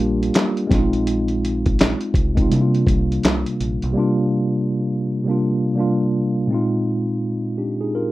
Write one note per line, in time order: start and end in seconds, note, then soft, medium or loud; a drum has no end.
0.00 0.30 A#1 medium
0.00 0.72 G3 loud
0.00 0.72 A#3 medium
0.00 0.72 D4 loud
0.00 0.73 F4 loud
0.00 0.73 G4 medium
0.23 closed hi-hat soft
0.34 snare loud
0.34 clap medium
0.34 closed hi-hat medium
0.57 closed hi-hat soft
0.67 1.94 A#1 medium
0.67 2.06 G#3 loud
0.67 2.07 C4 medium
0.67 kick medium
0.71 0.79 D4 medium
0.71 2.09 F4 medium
0.71 snare soft
0.71 closed hi-hat medium
0.78 2.11 D#4 medium
0.93 closed hi-hat soft
1.07 closed hi-hat medium
1.28 closed hi-hat soft
1.45 closed hi-hat medium
1.66 kick medium
1.66 closed hi-hat soft
1.79 snare loud
1.79 clap medium
1.79 closed hi-hat medium
2.01 closed hi-hat medium
2.14 2.45 C2 medium
2.14 kick medium
2.14 closed hi-hat medium
2.35 2.50 G#3 medium
2.35 2.51 C4 medium
2.35 kick medium
2.35 closed hi-hat soft
2.40 2.52 D#4 medium
2.40 2.53 F4 medium
2.48 3.87 C3 medium
2.48 2.82 C3 medium
2.48 3.87 G3 medium
2.48 3.88 A#3 medium
2.48 closed hi-hat medium
2.53 3.89 D4 medium
2.53 2.61 E4 medium
2.62 3.93 F4 medium
2.75 closed hi-hat soft
2.87 3.18 C2 medium
2.87 kick medium
2.87 closed hi-hat medium
3.12 closed hi-hat soft
3.23 3.43 C2 medium
3.23 snare loud
3.23 clap medium
3.23 closed hi-hat medium
3.46 closed hi-hat soft
3.61 3.79 A#1 medium
3.61 closed hi-hat medium
3.82 3.94 B1 medium
3.82 closed hi-hat soft
3.92 5.14 C3 loud
3.92 5.14 G3 medium
3.92 5.15 A#3 medium
3.97 5.16 D4 medium
3.97 5.17 F4 loud
5.24 5.72 C3 medium
5.24 5.73 G3 medium
5.24 5.74 A#3 medium
5.29 5.75 D4 medium
5.29 5.76 F4 medium
5.74 6.44 C3 medium
5.74 6.44 G3 medium
5.74 6.45 A#3 medium
5.79 6.46 D4 medium
5.79 6.47 F4 medium
6.47 7.85 A#2 medium
6.47 7.86 G#3 medium
6.47 7.87 C4 medium
6.52 7.59 D#4 medium
6.52 7.60 F4 medium
7.58 7.79 D4 medium
7.58 7.79 G4 soft
7.81 7.94 D#4 medium
7.81 7.93 G#4 medium
7.95 8.12 F4 medium
7.95 8.12 A#4 medium